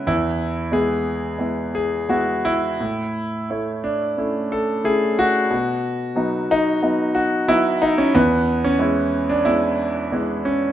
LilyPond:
<<
  \new Staff \with { instrumentName = "Grand piano" } { \time 4/4 \key e \mixolydian \tempo 4 = 90 e'4 gis'4. gis'8 fis'8 e'8~ | e'4. d'8 r8 a'8 gis'8 fis'8~ | fis'4. dis'4 fis'8 e'8 dis'16 cis'16 | b8. cis'16 r8. d'16 e'4. cis'8 | }
  \new Staff \with { instrumentName = "Grand piano" } { \time 4/4 \key e \mixolydian e,4 <gis b e'>4 <gis b e'>4 <gis b e'>4 | a,4 <a e' cis''>4 <a cis' e'>4 <a cis' e'>4 | b,4 <fis b dis'>4 <fis b dis'>4 <fis b dis''>4 | e,4 <gis b e'>4 <gis b>4 <gis b e'>4 | }
>>